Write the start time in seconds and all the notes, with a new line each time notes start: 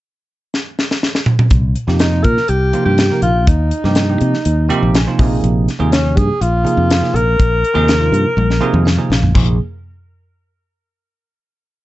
0.54 snare
0.79 snare
0.91 snare
1.03 snare
1.15 snare
1.26 mid tom
1.39 mid tom
1.50 C2, kick, closed hi-hat
1.75 closed hi-hat
1.87 F2 C3 F3 A#3 D#4 G4, snare
1.99 D#4, snare, closed hi-hat
2.11 C3 F3 A#3 D#4 F4
2.24 A#2 A#4, kick, closed hi-hat
2.37 snare
2.48 C2 D#4 G4 A#4, closed hi-hat
2.73 C3 F3 A#3 D#4 F4, closed hi-hat
2.85 G2 G4
2.98 snare, closed hi-hat
3.10 C3 F3 A#3 D#4 A#4, snare
3.22 A#1 F4, closed hi-hat
3.36 D#4 F4
3.47 D#2 D#4, kick, closed hi-hat
3.71 closed hi-hat
3.84 G2 C3 F3 A#3 D#4 G4, snare
3.95 snare, closed hi-hat
4.09 C3 F3 A#3 D#4 G4
4.21 C3, closed hi-hat
4.34 snare
4.45 D#2 D#4 A#4, closed hi-hat
4.69 C3 F3 A#3 D#4 G4, closed hi-hat
4.83 A#1
4.95 G#5, snare, closed hi-hat
5.06 C3 F3 A#3 D#4 F4
5.19 A#1 C3 F3 A#3 D#4 G#4, kick, open hi-hat
5.44 A#1, closed hi-hat
5.68 snare, closed hi-hat
5.79 D#2 C3 F3 A#3 D#4 G#4
5.92 C#4, snare, closed hi-hat
6.04 C3 F3 A#3 D#4 G#4
6.17 G2 G#4, kick, closed hi-hat
6.41 A#1 D#4 F4 G#4, closed hi-hat
6.64 C3 F3 A#3 D#4 G#4, closed hi-hat
6.77 F2
6.91 snare, closed hi-hat
7.01 C3 F3 A#3 D#4 G#4, snare
7.14 A#1 A#4, closed hi-hat
7.25 D#4
7.39 A#1, kick, closed hi-hat
7.64 closed hi-hat
7.74 D#2 C3 F3 A#3 D#4 G#4
7.88 snare, closed hi-hat
7.99 C3 F3 A#3 D#4 F4
8.12 G2, closed hi-hat
8.36 A#1 D#4 G#4, high tom
8.50 snare
8.60 C3 F3 A#3 D#4 G#4 G#5
8.73 F2, mid tom
8.85 F5, snare
8.98 C3 F3 A#3 D#4 G#4
9.10 A#1, snare
9.22 D#4 G#4, floor tom
9.35 A#1 C3 F3 A#3 D#4 G#4, kick, crash